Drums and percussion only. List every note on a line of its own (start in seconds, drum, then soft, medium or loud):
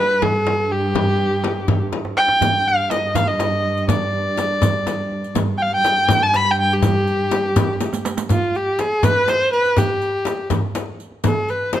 0.22 frame drum medium
0.22 tombak dum medium
0.47 tombak tek medium
0.47 frame drum medium
0.71 tombak ka soft
0.95 tombak dum medium
0.95 frame drum medium
1.20 tombak ka soft
1.44 tombak tek medium
1.44 frame drum medium
1.68 frame drum medium
1.68 tombak dum medium
1.92 tombak tek medium
1.92 frame drum medium
2.05 tombak ka medium
2.17 tombak tek medium
2.28 tombak ka medium
2.41 riq medium
2.41 tombak dum medium
2.41 frame drum medium
2.67 tombak ka soft
2.90 riq soft
2.90 tombak tek medium
2.90 frame drum medium
3.15 riq medium
3.15 tombak dum medium
3.15 frame drum medium
3.40 riq soft
3.40 tombak tek medium
3.40 frame drum medium
3.64 tombak ka soft
3.77 riq soft
3.88 riq medium
3.88 tombak dum medium
3.88 frame drum medium
4.13 tombak ka soft
4.38 riq soft
4.38 tombak tek medium
4.38 frame drum medium
4.62 riq medium
4.62 frame drum medium
4.62 tombak dum medium
4.87 riq soft
4.87 tombak tek medium
4.87 frame drum medium
5.12 tombak ka soft
5.24 riq soft
5.35 riq medium
5.35 frame drum medium
5.35 tombak dum medium
5.60 tombak ka soft
5.85 riq soft
5.85 tombak tek medium
5.85 frame drum medium
6.08 riq medium
6.08 frame drum loud
6.08 tombak dum medium
6.34 riq soft
6.34 tombak tek medium
6.58 tombak ka soft
6.71 riq soft
6.82 riq medium
6.82 tombak dum medium
6.82 frame drum loud
7.07 riq soft
7.07 tombak ka soft
7.31 riq soft
7.31 tombak tek medium
7.31 frame drum medium
7.56 riq medium
7.56 tombak dum medium
7.56 frame drum loud
7.81 riq medium
7.81 tombak tek medium
7.81 frame drum medium
7.93 riq medium
7.93 tombak ka medium
8.05 riq medium
8.05 tombak tek medium
8.17 riq medium
8.17 tombak ka medium
8.29 riq medium
8.29 frame drum medium
8.29 tombak dum medium
8.54 riq soft
8.54 tombak ka soft
8.79 riq medium
8.79 tombak tek medium
8.79 frame drum medium
9.03 riq medium
9.03 tombak dum medium
9.03 frame drum medium
9.28 riq medium
9.28 tombak tek medium
9.28 frame drum medium
9.53 riq soft
9.65 riq soft
9.65 tombak ka soft
9.77 riq medium
9.77 frame drum medium
9.77 tombak dum medium
10.02 riq soft
10.02 tombak ka soft
10.25 riq soft
10.25 tombak tek medium
10.25 frame drum medium
10.50 riq medium
10.50 frame drum loud
10.50 tombak dum medium
10.75 riq soft
10.75 tombak tek medium
10.75 frame drum medium
11.00 riq soft
11.12 tombak ka soft
11.24 riq medium
11.24 frame drum medium
11.24 tombak dum medium
11.49 riq soft
11.49 tombak ka soft
11.73 riq soft
11.73 tombak tek medium
11.73 frame drum medium